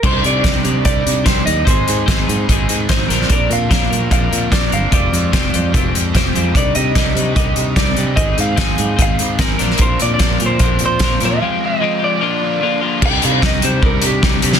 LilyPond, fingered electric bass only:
\new Staff \with { instrumentName = "Fingered electric bass" } { \clef bass \time 4/4 \key c \minor \tempo 4 = 148 c,8 c8 c,8 c8 c,8 c8 c,8 ees,8 | aes,,8 aes,8 aes,,8 aes,8 aes,,8 aes,8 aes,,8 bes,,8 | bes,,8 bes,8 bes,,8 bes,8 bes,,8 bes,8 bes,,8 g,,8 | f,,8 f,8 f,,8 f,8 f,,8 f,8 f,,8 f,8 |
c,8 c8 c,8 c8 c,8 c8 c,8 c8 | aes,,8 aes,8 aes,,8 aes,8 aes,,8 aes,8 aes,,8 bes,,8 | bes,,8 bes,8 bes,,8 bes,8 bes,,8 bes,8 bes,,8 bes,8 | r1 |
c,8 c8 c,8 c8 c,8 c8 c,8 c8 | }